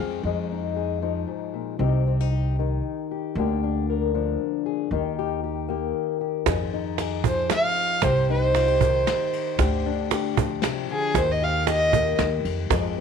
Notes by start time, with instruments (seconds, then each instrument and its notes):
Already playing: upright bass F2, steel-string acoustic guitar F3 G#3 C4
0.00 steel-string acoustic guitar G#4
0.11 cajon slap
0.23 upright bass F2, steel-string acoustic guitar F2 G#3 D#4 G#4
0.52 steel-string acoustic guitar D#4
0.77 steel-string acoustic guitar G#4
1.02 steel-string acoustic guitar F3 D#4
1.28 steel-string acoustic guitar G#2
1.54 steel-string acoustic guitar A#2
1.79 upright bass C2, steel-string acoustic guitar C3 C4 D#4 G4
2.07 steel-string acoustic guitar C4
2.20 steel-string acoustic guitar D#4
2.33 steel-string acoustic guitar G4
2.59 steel-string acoustic guitar D#3 D#4
3.11 steel-string acoustic guitar G4
3.35 upright bass D2, steel-string acoustic guitar D3 A#3 D4 G4
3.64 steel-string acoustic guitar D4
3.90 steel-string acoustic guitar A#4
4.14 steel-string acoustic guitar F3 D4
4.66 steel-string acoustic guitar G#4
4.91 upright bass D#2, steel-string acoustic guitar D#3 D#4 G4
5.19 steel-string acoustic guitar G4
5.44 steel-string acoustic guitar G4
5.68 steel-string acoustic guitar A#3 G4
6.21 steel-string acoustic guitar G4
6.46 steel-string acoustic guitar F2 G#4, upright bass F2, cajon bass, kick, cajon slap, ride
6.74 steel-string acoustic guitar D#4
6.98 steel-string acoustic guitar G#4, cajon slap, ride
7.24 steel-string acoustic guitar F3, fiddle C5, cajon bass
7.50 fiddle F5, cajon slap, snare, ride
7.76 cajon slap
8.02 upright bass C2, steel-string acoustic guitar C3 G4, fiddle C5, cajon bass, kick, cajon slap, ride
8.30 steel-string acoustic guitar D#4, fiddle C5
8.55 steel-string acoustic guitar F4, cajon slap, ride
8.68 steel-string acoustic guitar G4
8.81 steel-string acoustic guitar D#3, cajon bass
9.07 cajon slap, snare, ride
9.33 cajon slap, ride
9.59 upright bass D2, steel-string acoustic guitar D3 G4, kick, cajon bass, cajon slap, ride
9.86 steel-string acoustic guitar D4
10.10 steel-string acoustic guitar G4, cajon slap, ride
10.37 steel-string acoustic guitar F3, cajon bass
10.62 steel-string acoustic guitar C3, snare, cajon slap, ride
10.89 steel-string acoustic guitar D3, fiddle G#4, cajon slap
11.15 upright bass D#2, steel-string acoustic guitar D#3 G4, fiddle C5, kick, cajon bass, cajon slap, ride
11.32 fiddle D#5
11.42 steel-string acoustic guitar G4, fiddle F5, cajon slap
11.67 steel-string acoustic guitar G4, fiddle D#5, cajon slap, ride
11.93 steel-string acoustic guitar A#3, cajon bass
12.06 cajon slap
12.19 upright bass D#2, cajon slap, snare, ride
12.45 upright bass F2, ride
12.70 upright bass F2, steel-string acoustic guitar F2 F3 G#3 C4 G#4, kick, cajon bass, cajon slap, ride